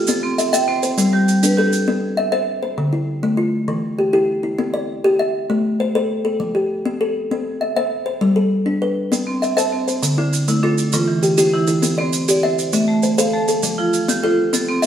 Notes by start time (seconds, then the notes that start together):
Already playing: G4
0.07 C4 A4, maracas
0.23 C4
0.38 E5, maracas
0.53 E5 G5, maracas
0.68 C4 C5
0.83 C5, maracas
0.98 G3 C5, maracas
1.13 G3 G4
1.28 maracas
1.43 D4 B4, maracas
1.57 G4 A4
1.73 maracas
1.88 C4
2.17 E5
2.32 C5 E5
2.63 C5
2.78 D3
2.93 E4
3.23 A3
3.37 F4
3.68 E3
3.99 G4
4.13 E4 G4
4.43 E4
4.58 C4
4.74 D5
5.04 G4
5.19 E5
5.50 A3
5.80 C5
5.95 A4 C5
6.25 A4
6.40 F3
6.55 G4
6.85 C4
7.01 A4
7.31 C4
7.61 E5
7.76 C5 E5
8.06 C5
8.21 G3
8.36 A4
8.66 D4
8.82 B4
9.12 C4, maracas
9.27 C4
9.42 E5, maracas
9.57 C5 E5 A5, maracas
9.73 C4
9.88 C5, maracas
10.03 D3, maracas
10.18 D3 D4 E4
10.33 maracas
10.48 A3 E4, maracas
10.63 D4 F4 A4
10.78 maracas
10.93 E3 F4, maracas
11.07 E3
11.23 G4, maracas
11.38 E4 G4 C5, maracas
11.53 E3 E4
11.67 E4, maracas
11.82 C4, maracas
11.98 C4 C5 D5
12.13 maracas
12.28 G4 D5, maracas
12.43 C5 E5
12.59 maracas
12.73 A3 E5, maracas
12.88 A3
13.03 C5, maracas
13.18 A4 C5 F5, maracas
13.33 A3 A4
13.48 A4, maracas
13.63 F3, maracas
13.78 F3 F4
13.93 maracas
14.08 C4 G4, maracas
14.23 F4 A4 C5
14.53 C4 A4, maracas
14.69 C4
14.82 E5, maracas